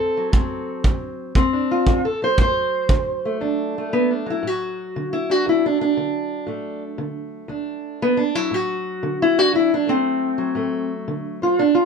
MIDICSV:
0, 0, Header, 1, 3, 480
1, 0, Start_track
1, 0, Tempo, 511945
1, 1268, Time_signature, 4, 2, 24, 8
1, 11112, End_track
2, 0, Start_track
2, 0, Title_t, "Steel-string acoustic guitar"
2, 0, Program_c, 0, 25
2, 0, Note_on_c, 0, 50, 63
2, 0, Note_on_c, 0, 60, 47
2, 0, Note_on_c, 0, 69, 96
2, 161, Note_on_c, 0, 54, 48
2, 275, Note_off_c, 0, 50, 0
2, 302, Note_on_c, 0, 45, 60
2, 312, Note_off_c, 0, 60, 0
2, 316, Note_on_c, 0, 60, 48
2, 753, Note_off_c, 0, 45, 0
2, 787, Note_off_c, 0, 69, 0
2, 799, Note_on_c, 0, 50, 60
2, 1241, Note_off_c, 0, 50, 0
2, 1272, Note_off_c, 0, 54, 0
2, 1276, Note_off_c, 0, 60, 0
2, 1276, Note_on_c, 0, 60, 86
2, 1293, Note_on_c, 0, 38, 66
2, 1436, Note_on_c, 0, 62, 83
2, 1607, Note_on_c, 0, 65, 82
2, 1728, Note_off_c, 0, 38, 0
2, 1768, Note_on_c, 0, 50, 58
2, 1912, Note_off_c, 0, 60, 0
2, 1912, Note_off_c, 0, 62, 0
2, 1917, Note_off_c, 0, 65, 0
2, 1922, Note_on_c, 0, 69, 72
2, 2075, Note_off_c, 0, 69, 0
2, 2082, Note_on_c, 0, 54, 46
2, 2098, Note_on_c, 0, 72, 91
2, 2206, Note_off_c, 0, 50, 0
2, 2243, Note_off_c, 0, 72, 0
2, 2246, Note_on_c, 0, 45, 60
2, 2264, Note_on_c, 0, 72, 95
2, 2685, Note_off_c, 0, 45, 0
2, 2718, Note_on_c, 0, 50, 61
2, 3051, Note_on_c, 0, 57, 49
2, 3162, Note_off_c, 0, 50, 0
2, 3194, Note_on_c, 0, 38, 65
2, 3196, Note_off_c, 0, 72, 0
2, 3199, Note_on_c, 0, 62, 43
2, 3533, Note_off_c, 0, 57, 0
2, 3544, Note_on_c, 0, 57, 48
2, 3640, Note_off_c, 0, 38, 0
2, 3685, Note_on_c, 0, 59, 82
2, 3837, Note_off_c, 0, 59, 0
2, 3846, Note_off_c, 0, 62, 0
2, 3849, Note_on_c, 0, 62, 81
2, 3986, Note_off_c, 0, 54, 0
2, 3997, Note_on_c, 0, 54, 50
2, 4000, Note_off_c, 0, 62, 0
2, 4031, Note_off_c, 0, 57, 0
2, 4035, Note_on_c, 0, 64, 73
2, 4151, Note_on_c, 0, 45, 60
2, 4194, Note_off_c, 0, 64, 0
2, 4194, Note_on_c, 0, 66, 89
2, 4599, Note_off_c, 0, 45, 0
2, 4652, Note_on_c, 0, 50, 69
2, 4805, Note_off_c, 0, 66, 0
2, 4808, Note_on_c, 0, 64, 87
2, 4965, Note_on_c, 0, 62, 44
2, 4980, Note_off_c, 0, 64, 0
2, 4980, Note_on_c, 0, 66, 87
2, 5089, Note_off_c, 0, 50, 0
2, 5121, Note_on_c, 0, 38, 71
2, 5125, Note_off_c, 0, 66, 0
2, 5147, Note_on_c, 0, 64, 81
2, 5289, Note_off_c, 0, 64, 0
2, 5302, Note_off_c, 0, 62, 0
2, 5305, Note_on_c, 0, 62, 81
2, 5439, Note_off_c, 0, 62, 0
2, 5450, Note_on_c, 0, 62, 86
2, 5564, Note_off_c, 0, 38, 0
2, 5599, Note_on_c, 0, 50, 58
2, 6043, Note_off_c, 0, 50, 0
2, 6062, Note_on_c, 0, 45, 62
2, 6075, Note_on_c, 0, 57, 46
2, 6400, Note_off_c, 0, 62, 0
2, 6514, Note_off_c, 0, 45, 0
2, 6546, Note_on_c, 0, 50, 60
2, 6996, Note_off_c, 0, 50, 0
2, 7015, Note_on_c, 0, 38, 67
2, 7024, Note_on_c, 0, 62, 45
2, 7279, Note_off_c, 0, 54, 0
2, 7470, Note_off_c, 0, 38, 0
2, 7523, Note_on_c, 0, 59, 94
2, 7658, Note_off_c, 0, 62, 0
2, 7662, Note_on_c, 0, 62, 85
2, 7676, Note_off_c, 0, 59, 0
2, 7826, Note_off_c, 0, 62, 0
2, 7830, Note_on_c, 0, 54, 52
2, 7832, Note_off_c, 0, 57, 0
2, 7832, Note_on_c, 0, 64, 87
2, 7980, Note_on_c, 0, 45, 62
2, 8008, Note_off_c, 0, 64, 0
2, 8008, Note_on_c, 0, 66, 93
2, 8432, Note_off_c, 0, 45, 0
2, 8466, Note_on_c, 0, 50, 60
2, 8638, Note_off_c, 0, 66, 0
2, 8647, Note_on_c, 0, 64, 106
2, 8797, Note_on_c, 0, 62, 51
2, 8802, Note_off_c, 0, 64, 0
2, 8802, Note_on_c, 0, 66, 91
2, 8915, Note_off_c, 0, 50, 0
2, 8940, Note_on_c, 0, 38, 71
2, 8955, Note_off_c, 0, 66, 0
2, 8959, Note_on_c, 0, 64, 92
2, 9114, Note_off_c, 0, 64, 0
2, 9128, Note_off_c, 0, 62, 0
2, 9132, Note_on_c, 0, 62, 86
2, 9256, Note_on_c, 0, 57, 45
2, 9274, Note_on_c, 0, 60, 97
2, 9280, Note_off_c, 0, 62, 0
2, 9392, Note_off_c, 0, 38, 0
2, 9720, Note_off_c, 0, 54, 0
2, 9731, Note_on_c, 0, 54, 50
2, 9888, Note_off_c, 0, 57, 0
2, 9891, Note_on_c, 0, 45, 62
2, 9899, Note_on_c, 0, 57, 48
2, 10231, Note_off_c, 0, 60, 0
2, 10348, Note_off_c, 0, 45, 0
2, 10387, Note_on_c, 0, 50, 61
2, 10703, Note_off_c, 0, 57, 0
2, 10708, Note_on_c, 0, 72, 44
2, 10718, Note_on_c, 0, 65, 90
2, 10835, Note_off_c, 0, 50, 0
2, 10849, Note_off_c, 0, 72, 0
2, 10860, Note_off_c, 0, 54, 0
2, 10864, Note_on_c, 0, 43, 61
2, 10871, Note_on_c, 0, 62, 89
2, 10873, Note_off_c, 0, 65, 0
2, 11014, Note_on_c, 0, 65, 87
2, 11029, Note_off_c, 0, 62, 0
2, 11112, Note_off_c, 0, 43, 0
2, 11112, Note_off_c, 0, 65, 0
2, 11112, End_track
3, 0, Start_track
3, 0, Title_t, "Drums"
3, 311, Note_on_c, 9, 36, 69
3, 405, Note_off_c, 9, 36, 0
3, 790, Note_on_c, 9, 36, 66
3, 884, Note_off_c, 9, 36, 0
3, 1269, Note_on_c, 9, 36, 61
3, 1362, Note_off_c, 9, 36, 0
3, 1749, Note_on_c, 9, 36, 58
3, 1843, Note_off_c, 9, 36, 0
3, 2231, Note_on_c, 9, 36, 63
3, 2325, Note_off_c, 9, 36, 0
3, 2711, Note_on_c, 9, 36, 66
3, 2805, Note_off_c, 9, 36, 0
3, 11112, End_track
0, 0, End_of_file